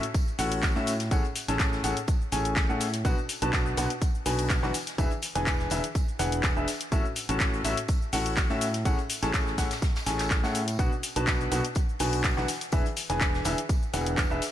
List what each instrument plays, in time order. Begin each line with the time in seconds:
0.03 closed hi-hat, shaker
0.14 kick, closed hi-hat, tambourine, shaker
0.28 shaker
0.39 fingered electric bass A1, grand piano A2 C#4 F#4 A4 F#5, open hi-hat, shaker
0.52 closed hi-hat, shaker
0.63 kick, snare, clap, closed hi-hat, tambourine, shaker
0.75 grand piano A2 C#4 F#4 A4 E5, fingered electric bass A2, snare, shaker
0.87 open hi-hat, tambourine, shaker
1.00 snare, closed hi-hat, shaker
1.11 fingered electric bass A1, grand piano A2 C#4 G#4 A4 F#5, kick, closed hi-hat, tambourine, shaker
1.24 closed hi-hat, shaker
1.36 open hi-hat, tambourine, shaker
1.48 fingered electric bass A1, grand piano A2 C#4 G#4 A4 A5, snare, closed hi-hat, shaker
1.60 kick, snare, clap, closed hi-hat, tambourine, shaker
1.73 snare, shaker
1.84 fingered electric bass A1, grand piano A2 C#4 G#4 A4 F#5, open hi-hat, tambourine, shaker
1.97 closed hi-hat, shaker
2.08 kick, closed hi-hat, tambourine, shaker
2.21 shaker
2.32 fingered electric bass A1, grand piano A2 C#4 G#4 A4 G#5, open hi-hat, tambourine, shaker
2.45 closed hi-hat, shaker
2.56 kick, snare, clap, closed hi-hat, tambourine, shaker
2.69 grand piano A2 C#4 G#4 A4 F#5, fingered electric bass A2, shaker
2.80 snare, open hi-hat, tambourine, shaker
2.94 snare, closed hi-hat, shaker
3.05 fingered electric bass B1, grand piano B2 D4 F#4 B4 F#5, kick, closed hi-hat, tambourine, shaker
3.18 shaker
3.29 open hi-hat, tambourine, shaker
3.42 fingered electric bass B1, grand piano B2 D4 F#4 B4 A5, closed hi-hat, shaker
3.53 kick, snare, clap, closed hi-hat, tambourine, shaker
3.66 closed hi-hat, shaker
3.77 fingered electric bass B1, grand piano B2 D4 F#4 B4 F#5, open hi-hat, tambourine, shaker
3.90 closed hi-hat, shaker
4.02 kick, closed hi-hat, tambourine, shaker
4.15 shaker
4.26 fingered electric bass B1, grand piano B2 D4 F#4 B4 G#5, open hi-hat, shaker
4.39 closed hi-hat, shaker
4.49 kick, snare, clap, closed hi-hat, tambourine, shaker
4.63 fingered electric bass B1, grand piano E3 D4 F#4 B4 F#5, snare, shaker
4.74 open hi-hat, tambourine, shaker
4.87 snare, closed hi-hat, shaker
4.98 fingered electric bass E1, grand piano E3 D4 G#4 B4 E5, kick, closed hi-hat, tambourine, shaker
5.11 closed hi-hat, shaker
5.22 open hi-hat, tambourine, shaker
5.35 fingered electric bass E1, grand piano E3 D4 G#4 B4 G#5, snare, closed hi-hat, shaker
5.46 kick, snare, clap, closed hi-hat, tambourine, shaker
5.59 snare, shaker
5.70 fingered electric bass E1, grand piano E3 D4 G#4 B4 E5, open hi-hat, tambourine, shaker
5.84 closed hi-hat, shaker
5.95 kick, closed hi-hat, tambourine, shaker
6.08 shaker
6.19 fingered electric bass E1, grand piano E3 D4 G#4 B4 F#5, open hi-hat, tambourine, shaker
6.32 closed hi-hat, shaker
6.43 kick, snare, clap, closed hi-hat, tambourine, shaker
6.56 fingered electric bass E1, grand piano D4 G#4 B4 E5, shaker
6.68 snare, open hi-hat, tambourine, shaker
6.81 snare, closed hi-hat, shaker
6.92 fingered electric bass A1, grand piano A2 C#4 F#4 A4 E5, kick, closed hi-hat, tambourine, shaker
7.05 shaker
7.16 open hi-hat, tambourine, shaker
7.29 fingered electric bass A1, grand piano A2 C#4 F#4 A4 A5, closed hi-hat, shaker
7.40 kick, snare, clap, closed hi-hat, tambourine, shaker
7.53 closed hi-hat, shaker
7.64 fingered electric bass A1, grand piano A2 C#4 F#4 A4 E5, open hi-hat, tambourine, shaker
7.77 closed hi-hat, shaker
7.88 kick, closed hi-hat, tambourine, shaker
8.02 shaker
8.13 fingered electric bass A1, grand piano A2 C#4 F#4 A4 F#5, open hi-hat, shaker
8.26 closed hi-hat, shaker
8.37 kick, snare, clap, closed hi-hat, tambourine, shaker
8.49 grand piano A2 C#4 F#4 A4 E5, fingered electric bass A2, snare, shaker
8.61 open hi-hat, tambourine, shaker
8.74 snare, closed hi-hat, shaker
8.85 fingered electric bass A1, grand piano A2 C#4 G#4 A4 F#5, kick, closed hi-hat, tambourine, shaker
8.98 closed hi-hat, shaker
9.10 open hi-hat, tambourine, shaker
9.23 fingered electric bass A1, grand piano A2 C#4 G#4 A4 A5, snare, closed hi-hat, shaker
9.34 kick, snare, clap, closed hi-hat, tambourine, shaker
9.47 snare, shaker
9.58 fingered electric bass A1, grand piano A2 C#4 G#4 A4 F#5, kick, snare, open hi-hat, tambourine, shaker
9.71 snare, closed hi-hat, tambourine, shaker
9.82 kick, snare, closed hi-hat, tambourine, shaker
9.95 snare, tambourine, shaker
10.06 fingered electric bass A1, grand piano A2 C#4 G#4 A4 G#5, snare, open hi-hat, tambourine, shaker
10.19 snare, clap, closed hi-hat, tambourine, shaker
10.30 kick, snare, clap, closed hi-hat, shaker
10.44 grand piano A2 C#4 G#4 A4 F#5, fingered electric bass A2, snare, tambourine, shaker
10.55 open hi-hat, shaker
10.68 closed hi-hat, tambourine, shaker
10.79 fingered electric bass B1, grand piano B2 D4 F#4 B4 F#5, kick, closed hi-hat, tambourine, shaker
10.92 shaker
11.03 open hi-hat, tambourine, shaker
11.16 fingered electric bass B1, grand piano B2 D4 F#4 B4 A5, closed hi-hat, shaker
11.27 kick, snare, clap, closed hi-hat, tambourine, shaker
11.41 closed hi-hat, shaker
11.51 fingered electric bass B1, grand piano B2 D4 F#4 B4 F#5, open hi-hat, tambourine, shaker
11.65 closed hi-hat, shaker
11.75 kick, closed hi-hat, tambourine, shaker
11.89 shaker
11.99 fingered electric bass B1, grand piano B2 D4 F#4 B4 G#5, open hi-hat, shaker
12.13 closed hi-hat, shaker
12.24 kick, snare, clap, closed hi-hat, tambourine, shaker
12.37 fingered electric bass B1, grand piano E3 D4 F#4 B4 F#5, snare, shaker
12.48 open hi-hat, tambourine, shaker
12.61 snare, closed hi-hat, shaker
12.72 fingered electric bass E1, grand piano E3 D4 G#4 B4 E5, kick, closed hi-hat, tambourine, shaker
12.86 closed hi-hat, shaker
12.96 open hi-hat, tambourine, shaker
13.09 fingered electric bass E1, grand piano E3 D4 G#4 B4 G#5, snare, closed hi-hat, shaker
13.21 kick, snare, clap, closed hi-hat, tambourine, shaker
13.34 snare, shaker
13.44 fingered electric bass E1, grand piano E3 D4 G#4 B4 E5, open hi-hat, tambourine, shaker
13.58 closed hi-hat, shaker
13.69 kick, closed hi-hat, tambourine, shaker
13.83 shaker
13.94 fingered electric bass E1, grand piano E3 D4 G#4 B4 F#5, open hi-hat, tambourine, shaker
14.06 closed hi-hat, shaker
14.18 kick, snare, clap, closed hi-hat, tambourine, shaker
14.31 fingered electric bass E1, grand piano D4 G#4 B4 E5, shaker
14.42 snare, open hi-hat, tambourine, shaker